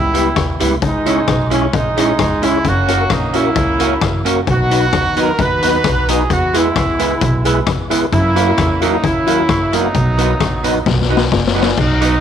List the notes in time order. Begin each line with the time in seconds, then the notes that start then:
Already playing: C#2 G3 B3 E4
0.14 G3 B3 E4 G4 B4, closed hi-hat
0.36 D#2 G4 B4, kick, cross-stick, closed hi-hat
0.60 C#2 G3 B3 E4 G4 B4, closed hi-hat
0.82 C#2 G#3 D#4, kick, closed hi-hat
1.05 G#3 C#4 E4 G#4 C#5, closed hi-hat
1.28 B1, kick, cross-stick, closed hi-hat
1.50 G#3 C#4 E4 G#4 C#5, closed hi-hat
1.73 A#1 G#3 D#4, kick, closed hi-hat
1.97 G#3 C#4 D#4 E4 G#4 C#5, closed hi-hat
2.19 C#2 G#4 C#5, kick, cross-stick, closed hi-hat
2.42 G#3 C#4 E4 G#4 C#5, closed hi-hat
2.65 F#1 A#3 C#4 F#4, kick, closed hi-hat
2.88 A#3 C#4 F#4 A#4, closed hi-hat
3.10 A#1 D#4, kick, cross-stick, closed hi-hat
3.33 A#3 C#4 E4 F#4 A#4, closed hi-hat
3.56 C#2, kick, closed hi-hat
3.79 A#3 C#4 F#4 A#4, closed hi-hat
4.02 F#1 F#4 A#4, kick, cross-stick, closed hi-hat
4.25 A#3 C#4 F#4 A#4, closed hi-hat
4.47 B1 B3 D#4 F#4, kick, closed hi-hat
4.70 F#3 B3 D#4 F#4 B4, closed hi-hat
4.93 D#2, kick, cross-stick, closed hi-hat
5.16 F#3 B3 D#4 F#4 A#4 B4, closed hi-hat
5.39 D#2 D#4 F#4 B4, kick, closed hi-hat
5.62 F#3 B3 D#4 F#4 B4, closed hi-hat
5.84 B1, kick, cross-stick, closed hi-hat
6.08 F#3 B3 D#4 F#4 G#4 B4, closed hi-hat
6.30 E2 B3 F#4, kick, closed hi-hat
6.53 G#3 B3 E4 G#4 B4, closed hi-hat
6.76 C#2, kick, cross-stick, closed hi-hat
6.99 G#3 B3 E4 G#4 B4, closed hi-hat
7.21 B1, kick, closed hi-hat
7.44 G#3 B3 E4 G#4 B4, closed hi-hat
7.67 C#2 G#4 B4, kick, cross-stick, closed hi-hat
7.90 G#3 B3 E4 G#4 B4, closed hi-hat
8.12 F#2 A#3 C#4 E4, kick, closed hi-hat
8.35 F#3 A#3 E4 F#4 A#4, cross-stick, closed hi-hat
8.58 E2, kick, cross-stick, closed hi-hat
8.81 F#3 A#3 D#4 E4 F#4 A#4, closed hi-hat
9.04 D#2 A#3 C#4 E4, kick, closed hi-hat
9.27 F#3 A#3 E4 F#4 A#4, closed hi-hat
9.49 F#1 F#4 A#4, kick, cross-stick, closed hi-hat
9.72 F#3 A#3 B3 D#4 E4 F#4 A#4, closed hi-hat
9.95 B1, kick, closed hi-hat
10.18 F#3 B3 D#4 F#4 B4, closed hi-hat
10.40 A#1, kick, cross-stick, closed hi-hat
10.64 F#3 B3 D#4 F#4 B4, closed hi-hat
10.86 B1, kick, snare
11.01 snare
11.09 F#3 B3 D#4 F#4 B4
11.17 snare
11.32 F#1 F#4 B4, kick, snare
11.47 snare
11.55 F#3 B3 D#4 F#4 B4
11.62 snare
11.78 B1 F#3 B3 D#4, kick, crash
12.01 F#3 B3 D#4, cross-stick, closed hi-hat